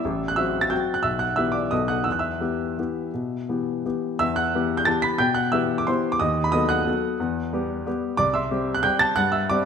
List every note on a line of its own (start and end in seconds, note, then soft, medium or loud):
0.00 0.27 E5 medium
0.00 0.29 E6 medium
0.05 0.36 A1 medium
0.28 0.37 F#6 medium
0.36 0.67 F#3 medium
0.36 0.68 C4 soft
0.36 0.68 F#4 medium
0.36 0.61 E5 medium
0.36 0.62 E6 medium
0.61 0.70 A6 medium
0.70 1.00 F#3 soft
0.70 1.01 C4 soft
0.70 1.01 F#4 soft
0.70 0.94 G5 medium
0.70 0.95 G6 medium
0.94 1.03 F#6 medium
1.03 1.35 B1 medium
1.03 1.19 E5 medium
1.03 1.19 E6 medium
1.19 1.35 F#5 medium
1.19 1.36 F#6 medium
1.36 1.68 E3 soft
1.36 1.68 B3 soft
1.36 1.68 G4 medium
1.36 1.53 E5 medium
1.36 1.53 E6 medium
1.52 1.70 D5 medium
1.52 1.70 D6 medium
1.71 2.05 B1 medium
1.71 2.02 F#3 soft
1.71 2.03 B3 soft
1.71 2.03 A4 soft
1.71 1.88 D#5 medium
1.71 1.88 D#6 medium
1.88 2.05 F#5 medium
1.88 2.05 F#6 medium
2.04 2.40 E2 medium
2.04 2.12 E6 medium
2.12 2.20 F#6 medium
2.19 3.80 E5 medium
2.19 3.84 E6 medium
2.40 2.74 E3 soft
2.40 2.74 B3 soft
2.40 2.74 G4 soft
2.78 3.10 E3 soft
2.78 3.10 B3 soft
2.78 3.10 G4 soft
3.14 3.47 B2 medium
3.49 3.81 E3 soft
3.49 3.81 B3 soft
3.49 3.82 G4 soft
3.85 4.17 E3 soft
3.85 4.17 B3 soft
3.85 4.17 G4 soft
4.19 4.53 E2 medium
4.19 4.36 E5 medium
4.19 4.36 E6 loud
4.36 4.76 F#5 medium
4.36 4.78 F#6 medium
4.55 4.84 E3 medium
4.55 4.84 B3 soft
4.55 4.84 G4 medium
4.77 4.86 G6 medium
4.85 5.16 E3 soft
4.85 5.17 B3 soft
4.85 5.17 G4 medium
4.85 5.02 A5 medium
4.85 5.03 A6 medium
5.02 5.19 B5 medium
5.02 5.19 B6 loud
5.18 5.52 B2 medium
5.18 5.35 G5 medium
5.18 5.35 G6 loud
5.34 5.52 F#5 medium
5.34 5.52 F#6 medium
5.52 5.84 E3 medium
5.52 5.85 B3 medium
5.52 5.85 G4 medium
5.52 5.77 E5 medium
5.52 5.78 E6 medium
5.78 5.87 D6 medium
5.87 6.18 E3 medium
5.87 6.18 B3 medium
5.87 6.18 G4 medium
5.87 6.11 C5 medium
5.87 6.13 C6 medium
6.12 6.21 D6 medium
6.19 6.53 D#2 medium
6.19 6.44 D#5 medium
6.19 6.45 D#6 medium
6.44 6.53 B5 medium
6.52 6.84 F#3 medium
6.52 6.84 B3 medium
6.52 6.84 A4 medium
6.52 6.69 D#5 medium
6.52 6.68 D#6 loud
6.69 8.14 F#5 medium
6.69 8.14 D#6 medium
6.69 8.18 F#6 medium
6.86 7.17 F#3 medium
6.86 7.17 B3 medium
6.86 7.17 A4 medium
7.20 7.52 E2 medium
7.53 7.83 G3 medium
7.53 7.83 B3 medium
7.53 7.83 G4 medium
7.86 8.15 G3 soft
7.86 8.16 B3 medium
7.86 8.16 G4 medium
8.17 8.50 C2 medium
8.17 8.34 D5 medium
8.17 8.34 D6 loud
8.34 8.73 E5 medium
8.34 8.73 C6 medium
8.34 8.75 E6 medium
8.51 8.81 G3 medium
8.51 8.81 C4 medium
8.51 8.81 G4 medium
8.74 8.84 F#6 medium
8.83 9.13 G3 soft
8.83 9.14 C4 soft
8.83 9.14 G4 medium
8.83 9.00 G5 medium
8.83 9.00 G6 loud
8.99 9.16 A5 medium
8.99 9.16 A6 loud
9.16 9.48 G2 medium
9.16 9.32 F#5 medium
9.16 9.33 F#6 loud
9.32 9.48 E5 medium
9.32 9.49 E6 medium
9.50 9.65 G3 medium
9.50 9.65 C4 medium
9.50 9.65 G4 medium
9.50 9.65 D5 medium
9.50 9.65 D6 loud